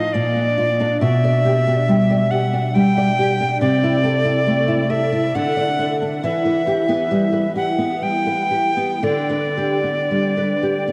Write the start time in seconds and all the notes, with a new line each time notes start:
Already playing: D#4 D#5
0.13 A#2 D5
0.35 D4
0.58 F4
0.80 D4
1.00 B2 E5
1.24 D5
1.45 G4
1.67 D4
1.88 G3
2.10 D5
2.31 G4 F#5
2.53 D4
2.74 G3 G5
2.97 D5
3.19 G4
3.40 D4
3.61 C3 D5
3.83 E4
4.03 A4
4.24 E4
4.47 A3
4.68 E4
4.90 A4 E5
5.12 E4
5.35 D3 F#5
5.57 D5
5.79 A4
6.02 D4
6.23 E3 E5
6.45 B4
6.67 G4
6.88 B3
7.11 G3
7.32 B4
7.56 G4 F#5
7.78 B3
8.02 G3 G5
8.26 B4
8.51 G4
8.77 B3
9.03 D3 D5
9.30 B4
9.57 G4
9.83 B3
10.11 G3
10.37 B4
10.63 G4
10.88 B3